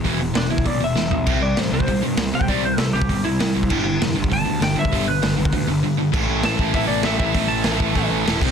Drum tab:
CC |----------------|x---------------|----------------|x---------------|
HH |o---o---o-------|----o---o---o---|o---o---o---o---|----o---o---o---|
SD |----o-------o---|----o-------o---|----o-------o---|----o-------o---|
FT |--------------o-|----------------|----------------|----------------|
BD |o------oo-------|o------oo------o|o------oo------o|o------oo------o|

CC |----------------|x---------------|--------------x-|
HH |o---o---o-------|----o---o---o---|o---o---o---o---|
SD |----o-----------|----o-------o---|----o-------o---|
FT |----------------|----------------|----------------|
BD |o------oo-------|o-----o-o-----o-|o-----o-o-----o-|